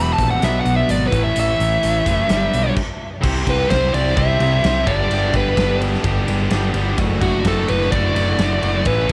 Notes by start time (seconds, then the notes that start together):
Already playing: E1 E2 B2 E3 B3 E4 G4 E5 B5
0.13 A5
0.18 A#1, kick, closed hi-hat
0.30 F#5
0.39 B2 B3 D4 F#4 D5, closed hi-hat
0.43 B1 F#3 B3 E5, snare
0.61 F#5
0.65 B1, closed hi-hat
0.76 E5
0.89 G#1 D5, closed hi-hat
1.07 A2 A3 C#4 E4 B4
1.12 A1 E3 A3 C#5, kick, closed hi-hat
1.24 E5
1.36 A1 E5, closed hi-hat
1.60 A1, closed hi-hat
1.83 A1, closed hi-hat
2.05 F#1 A2 E3 A3, kick, snare, closed hi-hat
2.27 G1 G2 D3 G3 B3 D4 G4 D5, snare, closed hi-hat
2.54 B1, closed hi-hat
2.77 kick, crash
3.21 C2 C3 G3 C4 E4 G4 C5, kick, crash
3.45 C2 C4 E4 G4 C5, kick, ride
3.50 B4
3.69 C2 C4 E4 G4 C5, kick, snare, ride
3.83 snare
3.94 C2 D5, ride
4.07 snare
4.16 C2 C3 G3 C4 E4 G4 C5 E5, kick, ride
4.40 C2 C4 E4 G4 C5, ride
4.63 C2 C4 E4 G4 C5, snare, ride
4.86 G1 G2 D3 G3 B3 D4 G4 D5, kick, ride
5.09 G1 G2 D3 G3 B3 D4 G4, ride
5.32 G1 G3 B3 D4 G4, kick, ride
5.37 B4
5.55 G1 G3 B3 D4 G4, kick, snare, ride
5.70 snare
5.82 ride
5.94 snare
6.02 G1 G2 D3 G3 B3 D4 G4, kick, ride
6.25 G1 G3 B3 D4 G4, ride
6.50 G1 G3 B3 D4 G4, snare, ride
6.74 G1 G3 B3 D4 G4, ride
6.97 F#1 D2 A2 D3 A3 F#4, kick, ride
7.21 F#1 D3 A3 F#4, kick, ride
7.44 F#1 A2 D3 A3 A4, kick, snare, ride
7.48 F#4
7.68 F#1 B4, ride
7.82 snare
7.92 F#1 D2 A2 D3 A3 F#4 D5, kick, ride
8.15 F#1 D3 A3 F#4, ride
8.39 F#1 A2 D3 A3 F#4, snare, ride
8.62 F#1 D3 A3 F#4, ride
8.85 A1 A2 E3 A3 C#4 E4 A4 B4, kick, ride
9.07 E4 A4